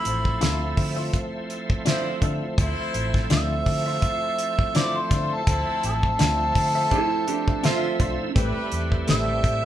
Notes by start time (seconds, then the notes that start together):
Already playing: F3 A3 C4 E4 C5
0.05 A1, closed hi-hat
0.25 kick
0.41 D2 D4 F4 C5 E5, snare, closed hi-hat
0.77 D3, kick, open hi-hat
0.96 F4 C5 E5
1.13 kick, closed hi-hat
1.50 closed hi-hat
1.70 kick
1.85 F3 D4 E4 F4 C5 E5, snare, closed hi-hat
2.22 D3 D4 F4 C5 E5, kick, closed hi-hat
2.58 D2 E4 C5, kick, closed hi-hat
2.79 muted fingered electric bass stroke
2.94 A1, closed hi-hat
3.14 kick, snare
3.30 D2 D4 F4 C5 E5, snare, closed hi-hat
3.66 D3, kick, open hi-hat
3.86 F4 C5 E5
4.02 kick, closed hi-hat
4.39 closed hi-hat
4.59 kick
4.75 F3 D4 E4 F4 C5 D5 E5, snare, closed hi-hat
4.97 C5
5.11 D3 D4 F4 C5 E5, kick, snare, closed hi-hat
5.34 A4
5.47 D2 F3 A3 C4 E4 C5 E5, kick, closed hi-hat
5.68 muted fingered electric bass stroke
5.83 A1 A4, closed hi-hat
6.03 kick
6.19 D2 D4 F4 C5 E5, snare, closed hi-hat
6.55 D3, kick, open hi-hat
6.75 F4 C5 E5
6.91 E4 A4, kick, closed hi-hat
7.28 D4 G4, closed hi-hat
7.48 kick
7.63 D4 F4 C5 E5, snare, closed hi-hat
7.99 B1 D4 F4 C5 E5, kick, closed hi-hat
8.34 A1 G3 A3 C4 E4 G4 B4, kick, closed hi-hat
8.72 E2, closed hi-hat
8.92 kick
9.08 A1 A3 C4 G4 B4 E5, snare, closed hi-hat
9.44 A2, kick, closed hi-hat